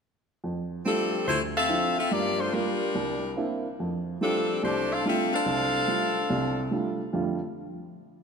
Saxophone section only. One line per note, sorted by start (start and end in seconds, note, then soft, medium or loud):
0.86 1.24 G3 medium
0.86 1.24 C4 medium
0.86 1.24 D4 medium
0.86 1.24 A4 medium
1.27 1.40 A3 medium
1.27 1.40 E4 medium
1.27 1.40 F4 medium
1.27 1.40 C5 medium
1.57 1.94 C4 medium
1.57 1.94 A4 medium
1.57 1.94 E5 medium
1.57 1.94 F5 medium
1.98 2.11 C4 medium
1.98 2.11 F4 medium
1.98 2.11 A4 medium
1.98 2.11 E5 medium
2.12 2.39 A#3 medium
2.12 2.39 F4 medium
2.12 2.39 G4 medium
2.12 2.39 D5 medium
2.39 2.53 A3 medium
2.39 2.53 D4 medium
2.39 2.53 F4 medium
2.39 2.53 C5 medium
2.53 3.37 G3 medium
2.53 3.37 D4 medium
2.53 2.95 F4 medium
2.53 3.37 A#4 medium
4.22 4.60 G3 medium
4.22 4.60 C4 medium
4.22 4.60 D4 medium
4.22 4.60 A4 medium
4.63 4.90 A3 medium
4.63 4.90 D4 medium
4.63 4.90 G4 medium
4.63 4.90 C5 medium
4.92 5.05 D4 medium
4.92 5.05 A4 medium
4.92 5.05 C5 medium
4.92 5.05 F5 medium
5.07 5.31 C4 medium
5.07 5.31 F4 medium
5.07 5.31 A4 medium
5.07 5.31 E5 medium
5.33 6.68 D4 medium
5.33 6.68 A4 medium
5.33 6.69 C5 medium
5.33 6.68 F5 loud